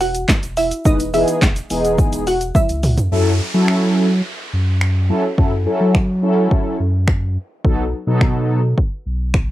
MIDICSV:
0, 0, Header, 1, 6, 480
1, 0, Start_track
1, 0, Tempo, 566038
1, 723, Time_signature, 4, 2, 24, 8
1, 8070, End_track
2, 0, Start_track
2, 0, Title_t, "Synth pluck"
2, 0, Program_c, 0, 84
2, 4, Note_on_c, 0, 78, 81
2, 11, Note_on_c, 0, 66, 64
2, 105, Note_off_c, 0, 78, 0
2, 108, Note_off_c, 0, 66, 0
2, 486, Note_on_c, 0, 76, 84
2, 493, Note_on_c, 0, 64, 63
2, 585, Note_off_c, 0, 76, 0
2, 590, Note_off_c, 0, 64, 0
2, 725, Note_on_c, 0, 75, 102
2, 733, Note_on_c, 0, 63, 79
2, 926, Note_off_c, 0, 75, 0
2, 930, Note_off_c, 0, 63, 0
2, 964, Note_on_c, 0, 76, 74
2, 970, Note_on_c, 0, 64, 61
2, 1415, Note_off_c, 0, 76, 0
2, 1418, Note_off_c, 0, 64, 0
2, 1925, Note_on_c, 0, 78, 89
2, 1932, Note_on_c, 0, 66, 69
2, 2025, Note_off_c, 0, 78, 0
2, 2029, Note_off_c, 0, 66, 0
2, 2164, Note_on_c, 0, 76, 82
2, 2170, Note_on_c, 0, 64, 65
2, 2502, Note_off_c, 0, 76, 0
2, 2505, Note_off_c, 0, 64, 0
2, 8070, End_track
3, 0, Start_track
3, 0, Title_t, "Analog polysynth"
3, 0, Program_c, 1, 90
3, 722, Note_on_c, 1, 52, 79
3, 723, Note_on_c, 1, 56, 72
3, 724, Note_on_c, 1, 59, 72
3, 724, Note_on_c, 1, 63, 73
3, 726, Note_on_c, 1, 71, 82
3, 837, Note_off_c, 1, 52, 0
3, 837, Note_off_c, 1, 56, 0
3, 838, Note_off_c, 1, 59, 0
3, 838, Note_off_c, 1, 63, 0
3, 839, Note_off_c, 1, 71, 0
3, 962, Note_on_c, 1, 52, 80
3, 964, Note_on_c, 1, 56, 72
3, 965, Note_on_c, 1, 59, 74
3, 965, Note_on_c, 1, 63, 69
3, 966, Note_on_c, 1, 68, 86
3, 1191, Note_off_c, 1, 52, 0
3, 1192, Note_off_c, 1, 56, 0
3, 1193, Note_off_c, 1, 59, 0
3, 1193, Note_off_c, 1, 63, 0
3, 1194, Note_off_c, 1, 68, 0
3, 1442, Note_on_c, 1, 52, 77
3, 1443, Note_on_c, 1, 56, 75
3, 1444, Note_on_c, 1, 59, 74
3, 1444, Note_on_c, 1, 63, 72
3, 1447, Note_on_c, 1, 68, 87
3, 1900, Note_off_c, 1, 52, 0
3, 1901, Note_off_c, 1, 56, 0
3, 1901, Note_off_c, 1, 59, 0
3, 1901, Note_off_c, 1, 63, 0
3, 1902, Note_off_c, 1, 68, 0
3, 2643, Note_on_c, 1, 54, 87
3, 2644, Note_on_c, 1, 61, 78
3, 2646, Note_on_c, 1, 64, 82
3, 2647, Note_on_c, 1, 69, 96
3, 2815, Note_off_c, 1, 54, 0
3, 2815, Note_off_c, 1, 61, 0
3, 2816, Note_off_c, 1, 64, 0
3, 2816, Note_off_c, 1, 69, 0
3, 3000, Note_on_c, 1, 54, 88
3, 3001, Note_on_c, 1, 61, 84
3, 3003, Note_on_c, 1, 64, 83
3, 3004, Note_on_c, 1, 69, 97
3, 3459, Note_off_c, 1, 54, 0
3, 3460, Note_off_c, 1, 61, 0
3, 3461, Note_off_c, 1, 64, 0
3, 3461, Note_off_c, 1, 69, 0
3, 4320, Note_on_c, 1, 54, 96
3, 4322, Note_on_c, 1, 61, 84
3, 4323, Note_on_c, 1, 64, 81
3, 4324, Note_on_c, 1, 69, 105
3, 4436, Note_off_c, 1, 54, 0
3, 4437, Note_off_c, 1, 61, 0
3, 4438, Note_off_c, 1, 64, 0
3, 4438, Note_off_c, 1, 69, 0
3, 4559, Note_on_c, 1, 54, 89
3, 4560, Note_on_c, 1, 61, 81
3, 4561, Note_on_c, 1, 64, 78
3, 4563, Note_on_c, 1, 69, 96
3, 4675, Note_off_c, 1, 54, 0
3, 4676, Note_off_c, 1, 61, 0
3, 4677, Note_off_c, 1, 64, 0
3, 4677, Note_off_c, 1, 69, 0
3, 4799, Note_on_c, 1, 54, 94
3, 4801, Note_on_c, 1, 61, 82
3, 4803, Note_on_c, 1, 64, 80
3, 4804, Note_on_c, 1, 69, 98
3, 5030, Note_off_c, 1, 54, 0
3, 5031, Note_off_c, 1, 61, 0
3, 5032, Note_off_c, 1, 64, 0
3, 5032, Note_off_c, 1, 69, 0
3, 5279, Note_on_c, 1, 54, 92
3, 5280, Note_on_c, 1, 61, 82
3, 5281, Note_on_c, 1, 64, 86
3, 5282, Note_on_c, 1, 69, 101
3, 5738, Note_off_c, 1, 54, 0
3, 5739, Note_off_c, 1, 61, 0
3, 5740, Note_off_c, 1, 64, 0
3, 5740, Note_off_c, 1, 69, 0
3, 6482, Note_on_c, 1, 54, 89
3, 6483, Note_on_c, 1, 59, 79
3, 6484, Note_on_c, 1, 63, 80
3, 6486, Note_on_c, 1, 69, 99
3, 6654, Note_off_c, 1, 54, 0
3, 6654, Note_off_c, 1, 59, 0
3, 6655, Note_off_c, 1, 63, 0
3, 6656, Note_off_c, 1, 69, 0
3, 6842, Note_on_c, 1, 54, 94
3, 6843, Note_on_c, 1, 59, 85
3, 6845, Note_on_c, 1, 63, 84
3, 6846, Note_on_c, 1, 69, 101
3, 7300, Note_off_c, 1, 54, 0
3, 7300, Note_off_c, 1, 59, 0
3, 7301, Note_off_c, 1, 63, 0
3, 7302, Note_off_c, 1, 69, 0
3, 8070, End_track
4, 0, Start_track
4, 0, Title_t, "Sub bass"
4, 0, Program_c, 2, 38
4, 0, Note_on_c, 2, 28, 91
4, 212, Note_off_c, 2, 28, 0
4, 366, Note_on_c, 2, 28, 90
4, 610, Note_off_c, 2, 28, 0
4, 725, Note_on_c, 2, 28, 101
4, 1051, Note_off_c, 2, 28, 0
4, 1203, Note_on_c, 2, 28, 100
4, 1367, Note_off_c, 2, 28, 0
4, 1446, Note_on_c, 2, 28, 95
4, 1690, Note_off_c, 2, 28, 0
4, 1805, Note_on_c, 2, 28, 91
4, 2131, Note_off_c, 2, 28, 0
4, 2285, Note_on_c, 2, 37, 87
4, 2530, Note_off_c, 2, 37, 0
4, 2645, Note_on_c, 2, 42, 94
4, 2890, Note_off_c, 2, 42, 0
4, 3003, Note_on_c, 2, 54, 88
4, 3576, Note_off_c, 2, 54, 0
4, 3843, Note_on_c, 2, 42, 98
4, 4334, Note_off_c, 2, 42, 0
4, 4563, Note_on_c, 2, 42, 91
4, 4808, Note_off_c, 2, 42, 0
4, 4923, Note_on_c, 2, 54, 88
4, 5495, Note_off_c, 2, 54, 0
4, 5765, Note_on_c, 2, 42, 100
4, 6255, Note_off_c, 2, 42, 0
4, 6483, Note_on_c, 2, 35, 97
4, 6729, Note_off_c, 2, 35, 0
4, 6842, Note_on_c, 2, 47, 87
4, 7415, Note_off_c, 2, 47, 0
4, 7682, Note_on_c, 2, 35, 103
4, 8070, Note_off_c, 2, 35, 0
4, 8070, End_track
5, 0, Start_track
5, 0, Title_t, "Downlifter"
5, 0, Program_c, 3, 103
5, 2644, Note_on_c, 3, 60, 80
5, 6483, Note_off_c, 3, 60, 0
5, 8070, End_track
6, 0, Start_track
6, 0, Title_t, "Drums"
6, 6, Note_on_c, 9, 46, 75
6, 6, Note_on_c, 9, 82, 55
6, 7, Note_off_c, 9, 82, 0
6, 7, Note_on_c, 9, 82, 49
6, 91, Note_off_c, 9, 46, 0
6, 92, Note_off_c, 9, 82, 0
6, 124, Note_on_c, 9, 42, 78
6, 124, Note_on_c, 9, 82, 75
6, 126, Note_off_c, 9, 82, 0
6, 126, Note_on_c, 9, 82, 53
6, 209, Note_off_c, 9, 42, 0
6, 211, Note_off_c, 9, 82, 0
6, 243, Note_on_c, 9, 36, 119
6, 243, Note_on_c, 9, 39, 127
6, 245, Note_on_c, 9, 82, 68
6, 247, Note_off_c, 9, 82, 0
6, 247, Note_on_c, 9, 82, 79
6, 253, Note_on_c, 9, 38, 102
6, 327, Note_off_c, 9, 39, 0
6, 328, Note_off_c, 9, 36, 0
6, 331, Note_off_c, 9, 82, 0
6, 337, Note_off_c, 9, 38, 0
6, 365, Note_on_c, 9, 42, 59
6, 365, Note_on_c, 9, 82, 59
6, 450, Note_off_c, 9, 42, 0
6, 450, Note_off_c, 9, 82, 0
6, 483, Note_on_c, 9, 46, 81
6, 483, Note_on_c, 9, 82, 58
6, 484, Note_off_c, 9, 82, 0
6, 484, Note_on_c, 9, 82, 50
6, 568, Note_off_c, 9, 46, 0
6, 569, Note_off_c, 9, 82, 0
6, 602, Note_on_c, 9, 82, 54
6, 606, Note_off_c, 9, 82, 0
6, 606, Note_on_c, 9, 42, 66
6, 606, Note_on_c, 9, 82, 70
6, 691, Note_off_c, 9, 42, 0
6, 691, Note_off_c, 9, 82, 0
6, 722, Note_on_c, 9, 82, 81
6, 724, Note_on_c, 9, 36, 125
6, 725, Note_off_c, 9, 82, 0
6, 725, Note_on_c, 9, 82, 84
6, 809, Note_off_c, 9, 36, 0
6, 810, Note_off_c, 9, 82, 0
6, 842, Note_on_c, 9, 82, 55
6, 847, Note_off_c, 9, 82, 0
6, 847, Note_on_c, 9, 42, 66
6, 847, Note_on_c, 9, 82, 67
6, 932, Note_off_c, 9, 42, 0
6, 932, Note_off_c, 9, 82, 0
6, 964, Note_on_c, 9, 82, 51
6, 966, Note_off_c, 9, 82, 0
6, 966, Note_on_c, 9, 46, 77
6, 966, Note_on_c, 9, 82, 54
6, 1051, Note_off_c, 9, 46, 0
6, 1051, Note_off_c, 9, 82, 0
6, 1083, Note_on_c, 9, 42, 76
6, 1083, Note_on_c, 9, 82, 78
6, 1168, Note_off_c, 9, 42, 0
6, 1168, Note_off_c, 9, 82, 0
6, 1203, Note_on_c, 9, 36, 120
6, 1204, Note_on_c, 9, 39, 120
6, 1204, Note_on_c, 9, 82, 86
6, 1205, Note_off_c, 9, 82, 0
6, 1205, Note_on_c, 9, 82, 64
6, 1214, Note_on_c, 9, 38, 97
6, 1288, Note_off_c, 9, 36, 0
6, 1289, Note_off_c, 9, 39, 0
6, 1290, Note_off_c, 9, 82, 0
6, 1299, Note_off_c, 9, 38, 0
6, 1323, Note_on_c, 9, 82, 51
6, 1324, Note_off_c, 9, 82, 0
6, 1324, Note_on_c, 9, 42, 52
6, 1324, Note_on_c, 9, 82, 51
6, 1409, Note_off_c, 9, 42, 0
6, 1409, Note_off_c, 9, 82, 0
6, 1444, Note_on_c, 9, 46, 84
6, 1444, Note_on_c, 9, 82, 58
6, 1529, Note_off_c, 9, 46, 0
6, 1529, Note_off_c, 9, 82, 0
6, 1563, Note_on_c, 9, 82, 51
6, 1566, Note_off_c, 9, 82, 0
6, 1566, Note_on_c, 9, 42, 71
6, 1566, Note_on_c, 9, 82, 75
6, 1651, Note_off_c, 9, 42, 0
6, 1651, Note_off_c, 9, 82, 0
6, 1681, Note_on_c, 9, 82, 74
6, 1682, Note_off_c, 9, 82, 0
6, 1682, Note_on_c, 9, 82, 74
6, 1683, Note_on_c, 9, 36, 109
6, 1767, Note_off_c, 9, 36, 0
6, 1767, Note_off_c, 9, 82, 0
6, 1803, Note_on_c, 9, 42, 65
6, 1803, Note_on_c, 9, 82, 65
6, 1806, Note_off_c, 9, 82, 0
6, 1806, Note_on_c, 9, 82, 57
6, 1888, Note_off_c, 9, 42, 0
6, 1891, Note_off_c, 9, 82, 0
6, 1924, Note_on_c, 9, 46, 77
6, 1924, Note_on_c, 9, 82, 57
6, 1927, Note_off_c, 9, 82, 0
6, 1927, Note_on_c, 9, 82, 48
6, 2009, Note_off_c, 9, 46, 0
6, 2012, Note_off_c, 9, 82, 0
6, 2043, Note_on_c, 9, 42, 77
6, 2043, Note_on_c, 9, 82, 75
6, 2044, Note_off_c, 9, 82, 0
6, 2044, Note_on_c, 9, 82, 52
6, 2128, Note_off_c, 9, 42, 0
6, 2129, Note_off_c, 9, 82, 0
6, 2161, Note_on_c, 9, 36, 118
6, 2163, Note_on_c, 9, 48, 63
6, 2164, Note_on_c, 9, 82, 75
6, 2246, Note_off_c, 9, 36, 0
6, 2248, Note_off_c, 9, 48, 0
6, 2249, Note_off_c, 9, 82, 0
6, 2283, Note_on_c, 9, 42, 57
6, 2283, Note_on_c, 9, 82, 58
6, 2285, Note_off_c, 9, 82, 0
6, 2285, Note_on_c, 9, 82, 41
6, 2368, Note_off_c, 9, 42, 0
6, 2369, Note_off_c, 9, 82, 0
6, 2401, Note_on_c, 9, 46, 79
6, 2401, Note_on_c, 9, 82, 56
6, 2403, Note_on_c, 9, 45, 98
6, 2404, Note_off_c, 9, 82, 0
6, 2404, Note_on_c, 9, 82, 50
6, 2486, Note_off_c, 9, 46, 0
6, 2487, Note_off_c, 9, 45, 0
6, 2489, Note_off_c, 9, 82, 0
6, 2522, Note_on_c, 9, 82, 55
6, 2523, Note_off_c, 9, 82, 0
6, 2523, Note_on_c, 9, 42, 65
6, 2523, Note_on_c, 9, 43, 96
6, 2523, Note_on_c, 9, 82, 68
6, 2607, Note_off_c, 9, 43, 0
6, 2608, Note_off_c, 9, 42, 0
6, 2608, Note_off_c, 9, 82, 0
6, 3122, Note_on_c, 9, 26, 114
6, 3207, Note_off_c, 9, 26, 0
6, 4081, Note_on_c, 9, 26, 117
6, 4166, Note_off_c, 9, 26, 0
6, 4563, Note_on_c, 9, 36, 114
6, 4648, Note_off_c, 9, 36, 0
6, 5043, Note_on_c, 9, 26, 114
6, 5043, Note_on_c, 9, 36, 118
6, 5128, Note_off_c, 9, 26, 0
6, 5128, Note_off_c, 9, 36, 0
6, 5523, Note_on_c, 9, 36, 105
6, 5607, Note_off_c, 9, 36, 0
6, 6000, Note_on_c, 9, 26, 118
6, 6001, Note_on_c, 9, 36, 112
6, 6085, Note_off_c, 9, 26, 0
6, 6086, Note_off_c, 9, 36, 0
6, 6483, Note_on_c, 9, 36, 111
6, 6568, Note_off_c, 9, 36, 0
6, 6963, Note_on_c, 9, 26, 118
6, 6963, Note_on_c, 9, 36, 115
6, 7047, Note_off_c, 9, 36, 0
6, 7048, Note_off_c, 9, 26, 0
6, 7442, Note_on_c, 9, 36, 102
6, 7527, Note_off_c, 9, 36, 0
6, 7920, Note_on_c, 9, 26, 116
6, 7921, Note_on_c, 9, 36, 111
6, 8005, Note_off_c, 9, 26, 0
6, 8006, Note_off_c, 9, 36, 0
6, 8070, End_track
0, 0, End_of_file